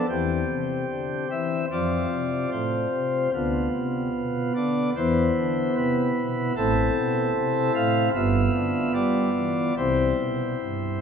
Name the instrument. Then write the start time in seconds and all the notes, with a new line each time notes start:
pipe organ
0.09 E2 E3 C4 G4
0.50 C3
0.91 D3
1.31 E3 E5
1.72 F2 F3 C4 F4 D5
2.12 C3
2.52 A2 C5
2.93 C3
3.34 D2 D3 B3 F4
3.74 C3
4.15 B2
4.55 D3 D5
4.96 E2 E3 B3 E4 C5
5.36 D3
5.77 C3 B4
6.17 B2
6.56 A1 A2 C4 E4 A4
6.96 B2
7.36 C3
7.75 A2 F5
8.15 G1 G2 B3 F4 E5
8.54 D3
8.94 G3 D5
9.35 E3
9.77 C2 C3 C4 E4 C5
10.19 B2
10.61 G2